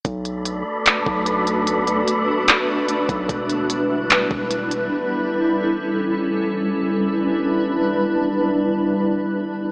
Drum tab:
HH |xxx-x-xx|xxx-x-xx|xxx-x-xx|--------|
CP |----x---|----x---|----x---|--------|
BD |o----o--|-------o|o----o--|--------|

HH |--------|--------|
CP |--------|--------|
BD |--------|--------|